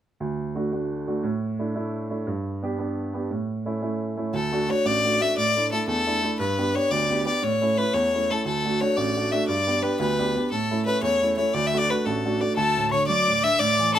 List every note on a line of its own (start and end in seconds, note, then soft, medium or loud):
0.20 1.20 D2 medium
0.55 0.71 A3 soft
0.55 0.71 D4 soft
0.55 0.72 F#4 soft
0.72 1.06 A3 soft
0.72 1.06 D4 soft
0.72 1.07 F#4 soft
1.07 1.23 A3 soft
1.07 1.23 D4 soft
1.07 1.23 F#4 soft
1.23 2.23 A2 medium
1.59 1.74 A3 soft
1.59 1.74 D4 soft
1.59 1.74 E4 soft
1.75 2.09 A3 soft
1.75 2.09 D4 soft
1.75 2.09 E4 soft
2.10 2.26 A3 soft
2.10 2.26 D4 soft
2.10 2.26 E4 soft
2.27 3.27 G2 medium
2.63 2.77 B3 soft
2.63 2.78 D4 soft
2.63 2.78 G4 soft
2.78 3.12 B3 soft
2.78 3.13 D4 soft
2.78 3.13 G4 soft
3.14 3.29 B3 soft
3.14 3.30 D4 soft
3.14 3.30 G4 soft
3.31 4.30 A2 medium
3.66 3.80 A3 soft
3.66 3.80 C#4 soft
3.66 3.81 E4 soft
3.82 4.16 A3 soft
3.82 4.16 C#4 soft
3.82 4.16 E4 soft
4.17 4.33 A3 soft
4.17 4.33 C#4 soft
4.17 4.33 E4 soft
4.33 4.67 D2 medium
4.33 4.72 A4 medium
4.52 4.67 A3 soft
4.52 4.67 D4 soft
4.52 4.67 F#4 soft
4.68 4.97 A3 soft
4.68 4.97 D4 soft
4.68 4.97 F#4 soft
4.68 4.88 C#5 medium
4.85 5.19 A1 medium
4.85 5.23 D5 medium
5.04 5.18 A3 soft
5.04 5.19 D4 soft
5.04 5.19 F#4 soft
5.19 5.33 A3 soft
5.19 5.33 D4 soft
5.19 5.33 F#4 soft
5.19 5.37 E5 medium
5.36 5.71 A2 medium
5.36 5.70 D5 medium
5.55 5.70 A3 soft
5.55 5.70 D4 soft
5.55 5.71 E4 soft
5.72 6.00 A3 soft
5.72 6.00 D4 soft
5.72 6.00 E4 soft
5.72 5.87 A4 medium
5.87 6.22 E2 medium
5.87 6.36 A4 medium
6.07 6.21 A3 soft
6.07 6.22 D4 soft
6.07 6.22 E4 soft
6.23 6.36 A3 soft
6.23 6.36 D4 soft
6.23 6.36 E4 soft
6.40 6.74 G2 medium
6.40 6.77 B4 medium
6.58 6.73 B3 soft
6.58 6.73 D4 soft
6.58 6.73 G4 soft
6.74 7.03 B3 soft
6.74 7.03 D4 soft
6.74 7.03 G4 soft
6.74 6.92 C#5 medium
6.91 7.25 D2 medium
6.91 7.26 D5 medium
7.09 7.24 B3 soft
7.09 7.24 D4 soft
7.09 7.25 G4 soft
7.26 7.39 B3 soft
7.26 7.39 D4 soft
7.26 7.39 G4 soft
7.26 7.45 D5 medium
7.42 7.77 A2 medium
7.42 7.79 C#5 medium
7.61 7.76 A3 soft
7.61 7.76 C#4 soft
7.61 7.77 E4 soft
7.78 8.06 A3 soft
7.78 8.06 C#4 soft
7.78 8.06 E4 soft
7.78 7.95 B4 medium
7.93 8.28 E2 medium
7.93 8.32 C#5 medium
8.13 8.28 A3 soft
8.13 8.28 C#4 soft
8.13 8.29 E4 soft
8.29 8.42 A3 soft
8.29 8.43 C#4 soft
8.29 8.43 E4 soft
8.29 8.45 A4 medium
8.45 8.80 D2 medium
8.45 8.82 A4 medium
8.64 8.79 A3 soft
8.64 8.80 D4 soft
8.64 8.80 F#4 soft
8.80 9.09 A3 soft
8.80 9.09 D4 soft
8.80 9.09 F#4 soft
8.80 8.98 C#5 medium
8.96 9.31 A1 medium
8.96 9.33 D5 medium
9.16 9.30 A3 soft
9.16 9.31 D4 soft
9.16 9.31 F#4 soft
9.32 9.45 A3 soft
9.32 9.45 D4 soft
9.32 9.45 F#4 soft
9.32 9.47 E5 medium
9.48 9.82 G2 medium
9.48 9.84 D5 medium
9.67 9.81 B3 soft
9.67 9.82 D4 soft
9.67 9.82 G4 soft
9.82 10.11 B3 soft
9.82 10.12 D4 soft
9.82 10.12 G4 soft
9.82 9.99 B4 medium
10.00 10.34 D2 medium
10.00 10.48 B4 medium
10.18 10.33 B3 soft
10.18 10.34 D4 soft
10.18 10.34 G4 medium
10.34 10.48 B3 soft
10.34 10.48 D4 soft
10.34 10.48 G4 soft
10.51 10.86 A2 medium
10.51 10.84 A4 medium
10.71 10.85 A3 soft
10.71 10.85 C#4 soft
10.71 10.85 E4 soft
10.86 11.14 A3 soft
10.86 11.15 C#4 soft
10.86 11.15 E4 soft
10.86 11.01 B4 medium
11.02 11.37 E2 medium
11.02 11.35 C#5 medium
11.21 11.36 A3 soft
11.21 11.36 C#4 soft
11.21 11.37 E4 soft
11.37 11.50 A3 soft
11.37 11.51 C#4 soft
11.37 11.51 E4 medium
11.37 11.55 C#5 medium
11.54 11.88 D2 medium
11.54 11.68 D5 medium
11.67 11.79 E5 medium
11.73 11.88 A3 soft
11.73 11.89 D4 soft
11.73 11.89 F#4 soft
11.77 11.91 D5 medium
11.90 12.18 A3 soft
11.90 12.18 D4 soft
11.90 12.18 F#4 medium
11.90 12.07 B4 medium
12.05 12.40 A1 medium
12.05 12.42 A4 medium
12.24 12.39 A3 soft
12.24 12.39 D4 soft
12.24 12.40 F#4 soft
12.40 12.53 A3 soft
12.40 12.54 D4 soft
12.40 12.54 F#4 soft
12.40 12.56 D5 medium
12.56 13.57 D2 medium
12.56 12.89 A4 medium
12.56 12.93 A5 medium
12.76 12.92 A2 soft
12.91 13.08 D3 soft
12.91 13.06 C#5 medium
12.91 13.07 C#6 medium
13.07 13.27 F#3 soft
13.07 13.45 D5 medium
13.07 13.45 D6 medium
13.28 13.43 A2 soft
13.43 13.59 D3 soft
13.43 13.61 E5 medium
13.43 13.60 E6 medium
13.59 13.99 A2 medium
13.59 13.93 D5 medium
13.59 13.96 D6 medium
13.79 13.95 E3 soft
13.94 13.99 D4 soft
13.94 13.99 A4 medium
13.94 13.99 A5 medium